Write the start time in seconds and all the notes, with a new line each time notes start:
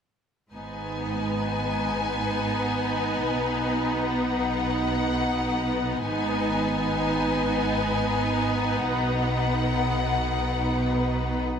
0.52 G#1 G#2 B3 D#4 B4
0.56 G#5
3.31 B1 B2
3.99 F#5
6.06 G#1 G#2 B3 D#4 B4 G#5
8.86 B1 B2 F#5